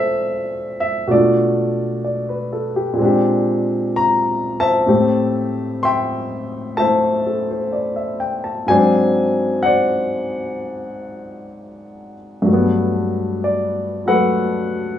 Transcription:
Already playing: A#2 A3 C4 D4 A4 C5 D5 E5 F5
0.80 E5
1.07 B2 A3 D4 D5
1.12 F4 A4
2.05 D5
2.29 B4
2.53 A4
2.76 G4
2.93 A#2 G#3
2.99 C4 D4
3.05 G4
3.96 A#5
4.60 C5 E5 A5
4.87 A2 A3 C4 G4
5.83 E5 G5 C6
6.77 A3 E4 C5 E5 A5
7.27 A4
7.50 C5
7.73 D5
7.96 E5
8.20 G5
8.44 A5
8.67 G#2 F#3 C4 C5 D5 G#5
8.71 D4
9.63 C5 D5 F#5
12.42 G2 F#3
12.49 A3
12.53 B3
13.44 D5
14.06 F#3 A3 A4 B4 F#5

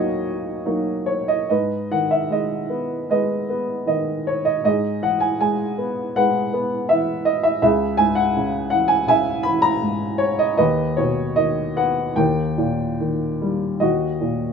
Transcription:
Already playing: D#2 F#3 A#3 D#4 F#4 C#5 D#5 F5
0.66 F#3 A#3 D#4
1.06 C#5
1.28 D#5
1.50 G#2 B4 D#5
1.91 D#3 F#5
2.11 E5
2.30 G#3 D#5
2.70 B3
3.10 G#3 B4 D#5
3.49 B3
3.86 D#3 D#5
4.27 C#5
4.45 D#5
4.64 G#2 G#4 D#5
5.02 E3 F#5
5.20 G#5
5.40 G#3 G#5
5.78 B3
6.16 G#3 B4 F#5
6.53 B3
6.89 E3 E5
7.25 D#5
7.43 E5
7.62 C#2 G#4 E5
7.97 G#2 G#5
8.15 F#5
8.36 C#3
8.70 E3 F#5
8.88 G#5
9.07 C#3 E5 G#5
9.43 E3 B5
9.62 A#5
9.82 G#2
10.18 C#5
10.39 D#5
10.57 D#2 B4 D#5
10.97 B2 C#5
11.36 D#3 D#5
11.77 B3 F#5
12.16 D#2 A#4 G5
12.58 A#2
13.00 D#3
13.41 G3
13.80 D#2 F#4 D#5
14.21 A#2

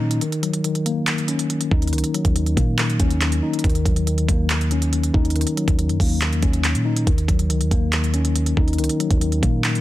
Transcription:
Already playing: A#2 D#3 F#3 A#3 C#4
0.00 D#4
0.11 closed hi-hat
0.21 D#3, closed hi-hat
0.32 closed hi-hat
0.42 F#3, closed hi-hat
0.54 closed hi-hat
0.64 D#3, closed hi-hat
0.75 closed hi-hat
0.86 A#3, closed hi-hat
1.07 D#3, clap, closed hi-hat
1.18 closed hi-hat
1.28 C#4, closed hi-hat
1.39 closed hi-hat
1.50 closed hi-hat
1.61 closed hi-hat
1.71 D#2 D#4, kick
1.82 closed hi-hat
1.87 closed hi-hat
1.93 C#2 D#3, closed hi-hat
1.98 closed hi-hat
2.04 closed hi-hat
2.14 F#3, closed hi-hat
2.25 D#2, kick, closed hi-hat
2.35 D#3, closed hi-hat
2.46 closed hi-hat
2.56 A#2 A#3, kick, closed hi-hat
2.78 D#3, clap, closed hi-hat
2.90 closed hi-hat
3.00 D#2 C#4, kick, closed hi-hat
3.11 closed hi-hat
3.21 clap, closed hi-hat
3.32 closed hi-hat
3.43 D#4
3.53 closed hi-hat
3.59 closed hi-hat
3.64 D#2 D#3, kick, closed hi-hat
3.70 closed hi-hat
3.75 closed hi-hat
3.85 D#2 F#3, kick, closed hi-hat
3.96 closed hi-hat
4.07 D#3, closed hi-hat
4.18 closed hi-hat
4.29 D#2 A#3, kick, closed hi-hat
4.50 clap, closed hi-hat
4.61 closed hi-hat
4.71 C#4, closed hi-hat
4.82 closed hi-hat
4.93 closed hi-hat
5.04 closed hi-hat
5.14 D#2 D#4, kick
5.25 closed hi-hat
5.30 closed hi-hat
5.36 D#3, closed hi-hat
5.41 closed hi-hat
5.47 closed hi-hat
5.56 F#3, closed hi-hat
5.68 D#2, kick, closed hi-hat
5.79 D#3, closed hi-hat
5.89 F#2, closed hi-hat
6.00 D#2 A#3, kick, open hi-hat
6.21 D#3, clap, closed hi-hat
6.32 E2, closed hi-hat
6.42 D#2 C#4, kick, closed hi-hat
6.53 closed hi-hat
6.64 clap, closed hi-hat
6.75 A#2, closed hi-hat
6.85 D#4
6.96 closed hi-hat
7.07 D#2 D#3, kick, closed hi-hat
7.18 closed hi-hat
7.28 D#2 F#3, kick, closed hi-hat
7.39 closed hi-hat
7.50 C#2 D#3, closed hi-hat
7.61 D#2, closed hi-hat
7.71 D#2 A#3, kick, closed hi-hat
7.93 D#3, clap, closed hi-hat
8.04 closed hi-hat
8.14 C#4, closed hi-hat
8.25 closed hi-hat
8.36 closed hi-hat
8.46 closed hi-hat
8.57 D#2 D#4, kick
8.68 closed hi-hat
8.73 closed hi-hat
8.78 C#2 D#3, closed hi-hat
8.84 closed hi-hat
8.89 closed hi-hat
9.00 F#3, closed hi-hat
9.11 D#2, kick, closed hi-hat
9.21 D#3, closed hi-hat
9.32 closed hi-hat
9.42 A#2 A#3, kick, closed hi-hat
9.64 D#3, clap, closed hi-hat
9.75 closed hi-hat

